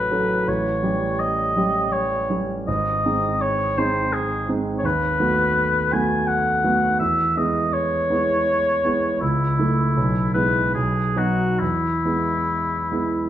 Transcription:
0.00 0.48 A1 soft
0.00 0.11 F#3 soft
0.00 0.12 C#4 soft
0.00 0.12 A4 soft
0.00 0.50 B4 medium
0.11 0.44 F#3 soft
0.11 0.44 C#4 soft
0.11 0.45 A4 soft
0.48 0.83 A1 soft
0.48 1.21 C#5 soft
0.83 1.52 G3 soft
0.83 1.52 C#4 soft
0.83 1.52 G4 soft
1.20 1.94 D#5 medium
1.57 2.26 G3 soft
1.57 2.26 C#4 soft
1.57 2.26 G4 soft
1.93 2.41 C#5 medium
2.30 2.64 G3 soft
2.30 2.64 C#4 soft
2.30 2.64 G4 soft
2.67 3.04 G#1 soft
2.67 3.43 D#5 medium
3.05 3.74 G#3 soft
3.05 3.74 C4 soft
3.05 3.74 D#4 soft
3.42 3.80 C#5 medium
3.78 4.45 G#3 soft
3.78 4.45 C4 soft
3.78 4.46 D#4 soft
3.78 4.15 C5 medium
4.13 4.49 G#4 soft
4.49 4.81 G#3 soft
4.49 4.81 C4 soft
4.49 4.81 D#4 soft
4.78 4.87 C#5 soft
4.83 5.18 D#2 soft
4.83 5.94 B4 medium
5.20 5.88 A3 soft
5.20 5.88 B3 soft
5.20 5.88 F#4 soft
5.93 6.60 A3 soft
5.93 6.60 B3 soft
5.93 6.60 F#4 soft
5.93 6.29 G#5 medium
6.27 6.99 F#5 medium
6.64 6.97 A3 soft
6.64 6.97 B3 soft
6.64 6.97 F#4 soft
6.99 7.36 E2 soft
6.99 7.36 E5 medium
7.37 8.06 G#3 soft
7.37 8.06 B3 soft
7.37 8.06 E4 soft
7.37 7.75 D#5 medium
7.74 9.21 C#5 medium
8.10 8.80 G#3 soft
8.10 8.80 B3 soft
8.10 8.81 E4 soft
8.85 9.18 G#3 soft
8.85 9.18 B3 soft
8.85 9.18 E4 soft
9.21 9.58 C#2 soft
9.21 10.33 E4 medium
9.59 9.93 A3 soft
9.59 9.93 E4 soft
9.97 10.34 B1 soft
10.34 10.71 G#3 soft
10.34 10.71 B3 soft
10.34 10.71 E4 soft
10.34 10.74 B4 soft
10.75 11.16 B1 soft
10.75 11.19 G#4 soft
11.16 11.56 F#3 soft
11.16 11.56 B3 soft
11.16 11.57 D#4 soft
11.16 11.61 F#4 soft
11.59 12.03 E2 soft
11.59 13.29 E4 soft
12.05 12.89 G#3 soft
12.05 12.89 B3 soft
12.05 12.89 E4 soft
12.92 13.29 G#3 soft
12.92 13.29 B3 soft
12.92 13.29 E4 soft

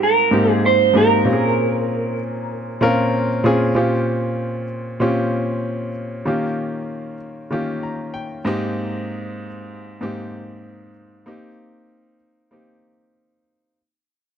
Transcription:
0.00 0.31 G#2 loud
0.00 1.27 G3 loud
0.00 0.31 A#3 medium
0.00 0.32 C4 medium
0.00 0.33 D#4 medium
0.00 0.51 A#4 loud
0.00 1.27 G#5 medium
0.31 0.77 G#2 medium
0.31 0.77 A#3 medium
0.31 0.78 C4 medium
0.31 0.78 D#4 medium
0.31 0.78 G4 medium
0.51 0.66 G#4 loud
0.66 0.96 C5 loud
0.93 1.17 G#2 medium
0.93 1.17 A#3 medium
0.93 1.18 C4 medium
0.93 1.18 D#4 medium
0.93 1.18 G4 medium
0.93 3.42 A#4 medium
1.25 2.13 A#2 medium
1.25 2.14 C4 medium
1.25 2.14 C#4 medium
1.25 2.14 F4 medium
1.25 1.34 G4 medium
1.33 2.18 G#4 medium
2.81 3.27 A#2 medium
2.81 3.27 C4 medium
2.81 3.27 C#4 medium
2.81 3.28 F4 medium
2.81 3.28 A#4 loud
3.44 3.67 A#2 medium
3.44 3.68 C4 medium
3.44 3.68 C#4 medium
3.44 3.68 F4 medium
3.44 3.69 G#4 loud
3.75 4.64 A#2 medium
3.75 4.64 C4 medium
3.75 4.64 C#4 medium
3.75 4.64 F4 medium
3.75 4.64 G4 medium
5.00 5.89 A#2 medium
5.00 5.89 C4 medium
5.00 5.89 C#4 medium
5.00 5.90 F4 medium
5.00 5.90 G4 medium
6.25 7.14 D#3 medium
6.25 7.14 A#3 medium
6.25 7.15 C#4 medium
6.25 7.15 F4 medium
6.25 7.15 G4 medium
7.51 8.39 D#3 medium
7.51 8.40 A#3 medium
7.51 8.40 C#4 medium
7.51 8.40 F4 medium
7.51 8.40 G4 medium
7.83 8.12 A#5 medium
8.14 8.43 G5 medium
8.45 9.46 G#2 loud
8.45 9.46 A#3 medium
8.45 9.47 C4 medium
8.45 9.47 D#4 medium
8.45 9.47 G4 loud
8.45 8.75 D#5 medium
10.01 10.90 G#2 medium
10.01 10.90 A#3 medium
10.01 10.90 C4 medium
10.01 10.90 D#4 medium
10.01 10.91 G4 medium
11.26 12.15 A#3 medium
11.26 12.15 C4 medium
11.26 12.15 D#4 medium
11.26 12.16 G4 medium
12.51 13.40 A#3 medium
12.51 13.40 C4 medium
12.51 13.41 D#4 medium
12.51 13.41 G4 medium

